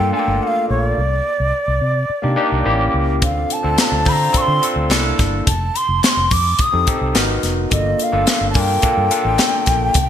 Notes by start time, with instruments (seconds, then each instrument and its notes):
Already playing: tine electric piano A#3 D4 F4 A4, bansuri G5
0.00 fingered electric bass G2
0.12 tine electric piano A3 D4 F4 A4, bansuri G#5
0.19 tine electric piano A#3, bansuri G5
0.28 fingered electric bass G1
0.43 bansuri F#5
0.48 bansuri F5
0.70 fingered electric bass A#1, bansuri C#5
0.87 bansuri D5
0.98 fingered electric bass C2
1.40 fingered electric bass C2
1.68 fingered electric bass C2
1.81 fingered electric bass C3
2.10 muted fingered electric bass stroke
2.22 fingered electric bass C3, tine electric piano A#3 D4 D#4 G4
2.36 tine electric piano A#3 D4 D#4 G4
2.52 fingered electric bass C2
2.65 fingered electric bass A1, tine electric piano A#3 C4 E4 G4
2.72 tine electric piano C#4
2.94 fingered electric bass C#2
3.22 fingered electric bass D2, tine electric piano C4 D4 F4, bansuri F5, kick, closed hi-hat
3.50 bansuri A5, closed hi-hat
3.63 fingered electric bass D2, tine electric piano C4 D4 F4 A4
3.78 bansuri A#5, snare, clap, closed hi-hat
3.84 bansuri A5
3.92 fingered electric bass D2
4.05 fingered electric bass D3, tine electric piano C4 D4 F4 C5, bansuri B5, kick, open hi-hat
4.13 bansuri A#5
4.33 tine electric piano C4 D4 F4 A4, muted fingered electric bass stroke, kick, closed hi-hat
4.37 bansuri C#6
4.41 bansuri C6
4.48 fingered electric bass D3
4.62 tine electric piano C4 D4 F4 A4, closed hi-hat
4.76 fingered electric bass D2
4.90 fingered electric bass C2, tine electric piano A#3 D4 E4 A4, snare, clap, closed hi-hat
5.19 fingered electric bass G1, kick, snare, closed hi-hat
5.47 fingered electric bass F1, bansuri A5, kick, closed hi-hat
5.75 bansuri C6, closed hi-hat
5.89 fingered electric bass F1
6.04 bansuri C#6, snare, clap, closed hi-hat
6.09 bansuri C6
6.17 fingered electric bass F1
6.31 fingered electric bass F2, bansuri D6, kick, open hi-hat
6.59 bansuri D#6, muted fingered electric bass stroke, kick, closed hi-hat
6.72 fingered electric bass F2, tine electric piano C4 D#4 G4 A4
6.87 tine electric piano C4 D#4 G4 A4, kick, closed hi-hat
7.01 fingered electric bass C2
7.14 fingered electric bass G#1, tine electric piano B3 D#4 F#4 A#4, snare, clap, closed hi-hat
7.43 fingered electric bass F1, snare, closed hi-hat
7.71 fingered electric bass G1, tine electric piano A#3 D4 F4 A4, bansuri D#5, kick, closed hi-hat
7.99 bansuri F5, closed hi-hat
8.12 fingered electric bass G1, tine electric piano A#3 D4 F4 A4
8.27 bansuri F5, snare, clap, closed hi-hat
8.41 fingered electric bass G1
8.50 bansuri A5, open hi-hat
8.54 fingered electric bass G2, tine electric piano A#3 D4 F4 A#4, bansuri G#5, kick
8.60 bansuri G5
8.82 tine electric piano A#3 D4 F4 A4, muted fingered electric bass stroke, kick, closed hi-hat
8.97 fingered electric bass G2
9.10 tine electric piano A#3 D4 F4 A4, closed hi-hat
9.25 fingered electric bass A1
9.39 snare, clap, closed hi-hat
9.66 fingered electric bass A#1, kick, snare, closed hi-hat
9.94 fingered electric bass C2, kick, closed hi-hat